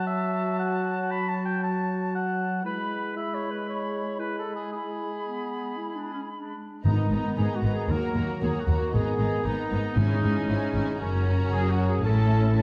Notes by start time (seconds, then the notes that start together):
Already playing: F#3 F#4 A5
0.06 E5
0.59 F#5
1.11 B5
1.29 A5
1.45 G5
1.63 A5
2.15 F#5
2.64 G#3 E4 B4 B5
3.16 E4 E5 B5
3.34 C#5
3.51 B4
3.69 C#5
4.19 E4 B4 B5
4.38 A4
4.55 G#4
4.73 E4 G#4 B5
5.26 B3
5.78 E4
5.96 D4
6.13 C#4
6.31 D4
6.84 G#1 G#2 B3 D#4 A#4 A#5
7.10 G#1 G#2 B3 D#4 A#5
7.37 G#1 G#2 B3 D#4 G#4 A#5
7.55 F#4
7.63 G#1 G#2 B3 D#4 A#5
7.73 G#4
7.88 D#2 F#3 A#3 F#4 A#4 A#5
8.15 D#2 A#3 F#4 A#5
8.41 D#2 A#3 F#4 G#4 A#5
8.60 F#4
8.67 D#2 A#3 F#4 A#5
8.77 F#4
8.93 G#1 G#2 B3 D#4 G#4 A#5
9.19 G#1 G#2 B3 D#4 A#5
9.45 G#1 G#2 B3 D#4 A#5
9.70 G#1 G#2 B3 D#4 A#5
9.97 G#1 G#2 C#4 E4 G#4 G#5
10.23 G#1 G#2 C#4 E4 G#5
10.48 G#1 G#2 C#4 E4 G#5
10.74 G#1 G#2 C#4 E4 G#5
10.99 F#1 F#2 C#4 F#4 A#4 A#5
11.51 F#1 F#2 G#4
11.70 F#4
11.87 G#4
12.03 A1 A2 C#4 E4 A4 A5
12.55 C#4 E4 A4 A5